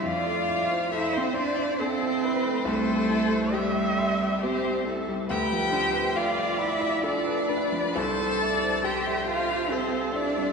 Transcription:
<<
  \new Staff \with { instrumentName = "Violin" } { \time 3/4 \key c \major \tempo 4 = 69 f''4 e''16 c''16 d''8 c''4 | a'4 g'4 c''8 r8 | g''4 f''8 e''8 d''4 | a''4 g''8 f''8 c''8 d''8 | }
  \new Staff \with { instrumentName = "Viola" } { \time 3/4 \key c \major d''4 c''4 a'8 b'8 | c''4 e''4 g'8 a'8 | b'8 c''8 d''4 a'8 b'8 | c''8 d''8 c''4 a'4 | }
  \new Staff \with { instrumentName = "Grand piano" } { \time 3/4 \key c \major f,16 a16 e'16 c''16 a'16 e''16 c'''16 e''16 a'16 c''16 e'16 a16 | c,16 g16 e'16 c''16 g'16 e''16 c'''16 e''16 g'16 c''16 e'16 g16 | d,16 f16 d'16 b'16 f'16 d''16 b''16 d''16 f'16 b'16 d'16 f16 | c,16 g16 e'16 c''16 g'16 e''16 c'''16 e''16 g'16 c''16 e'16 g16 | }
  \new Staff \with { instrumentName = "Cello" } { \time 3/4 \key c \major f'4 e'16 c'16 d'8 c'4 | a4 g4 c'8 r8 | g'4 f'8 e'8 d'4 | a'4 g'8 f'8 c'8 d'8 | }
>>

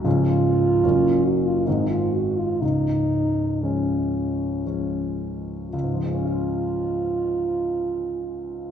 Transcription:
<<
  \new Staff \with { instrumentName = "French horn" } { \time 3/4 \key des \major \tempo 4 = 60 f'4. ges'16 f'16 ees'16 f'16 ges'16 f'16 | ees'4 des'4. r8 | f'2. | }
  \new Staff \with { instrumentName = "Grand piano" } { \clef bass \time 3/4 \key des \major <des,, des, f aes des'>4 <ges,, ges, ges bes des'>4 <aes,, aes, ees aes c'>4 | <des,, des,>4 <f aes des'>4 <f aes des'>4 | <des, aes, f aes des' f'>2. | }
>>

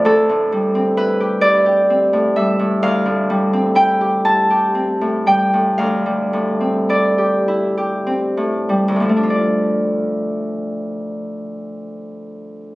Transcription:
\new Staff \with { instrumentName = "Harp" } { \time 6/8 \key d \minor \tempo 4. = 37 << { a'4 b'8 d''4 e''8 | f''4 g''8 a''4 g''8 | f''4 d''2 | <d, a, f a d' f' d''>2. | } \\ { <d, c'>16 a,16 g16 c'16 e'16 g'16 e'16 g'16 c'16 a,16 g16 a,16 | d,16 a,16 g16 c'16 e'16 g'16 e'16 g'16 c'16 a,16 g16 a,16 | d,16 g16 a,16 c'16 e'16 g'16 e'16 g'16 c'16 a,16 g16 a,16 | r2. | } >> }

